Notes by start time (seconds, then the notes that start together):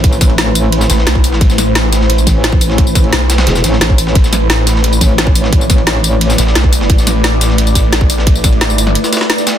Already playing: A1 A3 E4 B4 C5
0.04 kick, closed hi-hat, ride
0.13 tambourine
0.21 kick, snare, closed hi-hat, ride, tambourine
0.30 ride
0.38 snare, closed hi-hat, ride
0.55 closed hi-hat, ride, tambourine
0.72 closed hi-hat, ride
0.81 snare, tambourine
0.90 A1, snare, closed hi-hat, ride, tambourine
0.98 snare
1.07 B1, snare, closed hi-hat, ride
1.15 kick, ride
1.24 open hi-hat, ride, tambourine
1.32 snare
1.41 A1, kick, closed hi-hat, ride
1.50 snare, tambourine
1.58 snare, closed hi-hat, ride, tambourine
1.75 snare, closed hi-hat, ride
1.92 snare, closed hi-hat, ride, tambourine
2.01 snare
2.10 closed hi-hat, ride
2.18 ride, tambourine
2.27 A1, kick, snare, closed hi-hat, ride, tambourine
2.44 snare, closed hi-hat, ride
2.52 kick
2.61 open hi-hat, ride, tambourine
2.70 snare
2.78 kick, closed hi-hat, ride
2.87 tambourine
2.95 kick, snare, closed hi-hat, ride, tambourine
3.04 ride
3.12 B1, snare, closed hi-hat, ride
3.30 snare, closed hi-hat, ride, tambourine
3.38 snare, ride
3.47 E1, snare, closed hi-hat, ride
3.55 snare, tambourine
3.64 A1, snare, closed hi-hat, ride, tambourine
3.73 snare
3.81 A1, snare, closed hi-hat, ride
3.90 kick, ride
3.98 open hi-hat, ride, tambourine
4.07 snare
4.15 A1 D5, kick, closed hi-hat, ride
4.24 snare, tambourine
4.33 snare, closed hi-hat, ride, tambourine
4.50 snare, closed hi-hat, ride
4.67 snare, closed hi-hat, ride, tambourine
4.75 snare
4.84 closed hi-hat, ride
4.93 ride, tambourine
5.01 A1, kick, snare, closed hi-hat, ride, tambourine
5.18 snare, closed hi-hat, ride
5.27 kick
5.35 open hi-hat, ride, tambourine
5.44 snare
5.52 kick, closed hi-hat, ride
5.61 tambourine
5.70 kick, snare, closed hi-hat, ride, tambourine
5.78 ride
5.87 snare, closed hi-hat, ride
6.04 closed hi-hat, ride, tambourine
6.21 closed hi-hat, ride
6.30 snare, tambourine
6.38 A1, snare, closed hi-hat, ride, tambourine
6.47 snare
6.55 B1, snare, closed hi-hat, ride
6.64 kick, ride
6.72 open hi-hat, ride, tambourine
6.81 snare
6.90 A1, kick, closed hi-hat, ride
6.98 snare, tambourine
7.07 snare, closed hi-hat, ride, tambourine
7.24 snare, closed hi-hat, ride
7.41 snare, closed hi-hat, ride, tambourine
7.50 snare
7.58 closed hi-hat, ride
7.67 ride, tambourine
7.75 A1, kick, snare, closed hi-hat, ride, tambourine
7.92 A1, snare, closed hi-hat, ride
8.01 kick
8.10 open hi-hat, ride, tambourine
8.18 snare
8.27 kick, closed hi-hat, ride
8.35 tambourine
8.44 kick, snare, closed hi-hat, ride, tambourine
8.53 ride
8.61 G#1, snare, closed hi-hat, ride
8.70 tambourine
8.78 closed hi-hat, ride, tambourine
8.87 snare
8.95 closed hi-hat, ride
9.04 snare, tambourine
9.12 snare, closed hi-hat, ride, tambourine
9.17 snare, ride
9.21 snare, ride
9.30 snare, closed hi-hat, ride
9.38 snare, tambourine
9.47 snare, open hi-hat, ride, tambourine